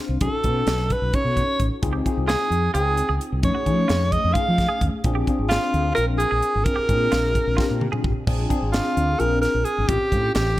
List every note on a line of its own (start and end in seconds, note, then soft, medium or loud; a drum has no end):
0.00 0.16 C4 medium
0.00 0.16 D4 medium
0.00 0.17 F4 medium
0.00 0.17 C5 medium
0.09 0.18 C2 medium
0.21 0.30 B1 loud
0.21 0.43 C#4 medium
0.21 0.43 D#4 medium
0.21 0.43 F#4 medium
0.21 0.94 A4 medium
0.21 0.43 A4 medium
0.21 kick loud
0.21 closed hi-hat medium
0.44 0.61 B2 medium
0.44 1.09 C#4 medium
0.44 1.10 D#4 medium
0.44 1.10 F#4 medium
0.44 1.10 B4 medium
0.44 kick medium
0.44 closed hi-hat medium
0.66 0.93 B1 medium
0.66 snare loud
0.66 closed hi-hat medium
0.90 1.16 B4 medium
0.90 kick medium
0.90 closed hi-hat medium
1.01 1.10 B1 medium
1.13 1.79 C#4 medium
1.13 1.79 D#4 medium
1.13 1.79 F#4 medium
1.13 1.79 A4 medium
1.13 1.66 C#5 loud
1.13 kick loud
1.13 closed hi-hat medium
1.24 1.42 B2 medium
1.37 kick medium
1.37 closed hi-hat soft
1.59 1.68 A1 medium
1.59 kick medium
1.59 closed hi-hat soft
1.82 2.00 C#2 loud
1.82 2.04 C4 medium
1.82 2.04 D#4 medium
1.82 2.04 F4 medium
1.82 2.04 G#4 loud
1.82 kick loud
1.82 closed hi-hat medium
1.93 2.07 G4 medium
2.05 2.71 C4 medium
2.05 2.71 D#4 medium
2.05 2.71 F4 medium
2.05 2.71 G#4 medium
2.05 kick medium
2.05 closed hi-hat medium
2.17 2.34 C2 medium
2.28 2.42 F4 medium
2.28 2.71 G#4 medium
2.28 snare loud
2.28 closed hi-hat medium
2.50 2.68 F2 medium
2.50 closed hi-hat medium
2.74 3.00 C#2 medium
2.74 3.40 C4 medium
2.74 3.40 D#4 medium
2.74 2.88 F4 medium
2.74 3.40 F4 medium
2.74 3.17 G#4 loud
2.74 3.40 G5 medium
2.74 closed hi-hat medium
2.97 closed hi-hat medium
3.09 3.18 C#2 medium
3.09 3.23 G#4 medium
3.21 closed hi-hat medium
3.32 3.41 C2 medium
3.42 3.52 F2 loud
3.42 3.65 A3 medium
3.42 3.65 C#4 medium
3.42 3.65 D#4 medium
3.42 3.65 G#4 medium
3.42 4.13 C#5 medium
3.42 kick loud
3.42 closed hi-hat medium
3.55 3.68 F#4 medium
3.55 muted fretless electric bass stroke soft
3.66 3.84 F3 medium
3.66 4.31 A3 medium
3.66 4.31 C#4 medium
3.66 4.31 D#4 medium
3.66 4.32 G#4 medium
3.66 kick medium
3.66 closed hi-hat medium
3.88 4.15 F2 medium
3.88 4.02 F4 medium
3.88 snare loud
3.88 closed hi-hat medium
4.12 4.35 D#5 medium
4.12 kick medium
4.12 closed hi-hat medium
4.24 4.33 F2 medium
4.33 5.01 A3 medium
4.33 5.01 C#4 medium
4.33 5.01 D#4 medium
4.33 4.48 F4 medium
4.33 5.01 G#4 medium
4.33 4.86 F5 medium
4.33 kick medium
4.33 closed hi-hat medium
4.48 4.65 F3 medium
4.58 kick medium
4.58 snare soft
4.58 closed hi-hat medium
4.68 4.83 G#4 medium
4.81 4.90 D#2 medium
4.81 kick medium
4.81 closed hi-hat medium
5.04 5.22 A#1 medium
5.04 5.26 C4 loud
5.04 5.27 D4 medium
5.04 5.27 F4 medium
5.04 5.27 G#4 loud
5.04 kick loud
5.04 closed hi-hat medium
5.15 5.29 G4 medium
5.27 5.93 C4 medium
5.27 5.93 D4 medium
5.27 5.94 F4 medium
5.27 5.94 G#4 medium
5.27 kick medium
5.27 closed hi-hat soft
5.39 5.56 G#1 medium
5.49 5.93 F4 medium
5.49 5.64 F4 medium
5.49 snare medium
5.49 closed hi-hat medium
5.73 5.91 D2 medium
5.73 closed hi-hat medium
5.95 6.23 A#1 medium
5.95 6.62 C4 medium
5.95 6.62 D4 medium
5.95 6.09 F4 medium
5.95 6.62 F4 medium
5.95 6.05 A#4 loud
5.95 6.62 A#4 medium
5.95 closed hi-hat medium
6.18 6.66 G#4 loud
6.18 closed hi-hat medium
6.31 6.40 A#1 medium
6.31 6.45 G#4 medium
6.42 closed hi-hat medium
6.55 6.63 G#1 medium
6.64 6.87 C4 medium
6.64 6.88 D4 medium
6.64 6.88 F4 medium
6.64 6.88 G#4 medium
6.64 8.03 A#4 loud
6.64 kick loud
6.64 closed hi-hat medium
6.76 6.90 G4 medium
6.76 muted fretless electric bass stroke soft
6.88 7.06 A#2 medium
6.88 7.54 C4 medium
6.88 7.54 D4 medium
6.88 7.54 F4 medium
6.88 7.54 G#4 medium
6.88 kick medium
6.88 closed hi-hat medium
7.12 7.38 A#1 medium
7.12 7.25 F4 medium
7.12 snare medium
7.12 closed hi-hat medium
7.35 kick medium
7.35 closed hi-hat medium
7.47 7.55 A#1 medium
7.57 8.23 C4 medium
7.57 8.23 D4 medium
7.57 7.71 F4 medium
7.57 8.23 F4 medium
7.57 8.23 G4 loud
7.57 kick medium
7.57 snare medium
7.70 7.87 A#2 medium
7.81 mid tom medium
7.92 8.06 G#4 medium
7.92 mid tom medium
8.04 8.13 G#1 medium
8.04 kick medium
8.27 8.45 A#1 medium
8.27 8.48 C4 medium
8.27 8.49 D4 medium
8.27 8.49 F4 medium
8.27 8.49 G#4 loud
8.27 kick loud
8.27 crash loud
8.49 9.15 C4 medium
8.49 9.15 D4 medium
8.49 9.15 F4 medium
8.49 9.15 G#4 medium
8.49 kick medium
8.49 closed hi-hat medium
8.62 8.79 G#1 medium
8.72 9.21 F4 medium
8.72 snare loud
8.72 closed hi-hat medium
8.97 9.14 D2 medium
8.97 closed hi-hat medium
9.19 9.45 A#1 medium
9.19 9.84 C4 medium
9.19 9.84 D4 medium
9.19 9.85 F4 medium
9.19 9.85 G#4 medium
9.19 9.41 A#4 loud
9.19 closed hi-hat medium
9.41 9.66 A#4 medium
9.41 snare soft
9.41 closed hi-hat soft
9.54 9.63 A#1 medium
9.64 9.90 G#4 medium
9.64 closed hi-hat medium
9.78 9.86 G#1 medium
9.88 9.97 A1 loud
9.88 10.10 C4 medium
9.88 10.10 C#4 medium
9.88 10.10 F4 medium
9.88 10.10 G4 medium
9.88 10.34 G4 medium
9.88 kick loud
9.88 closed hi-hat medium
10.12 10.29 A2 medium
10.12 10.60 C4 medium
10.12 10.60 C#4 medium
10.12 10.60 F4 medium
10.12 10.60 A4 medium
10.12 kick medium
10.12 closed hi-hat medium
10.35 10.60 A1 medium
10.35 10.60 G4 medium
10.35 snare loud
10.35 closed hi-hat medium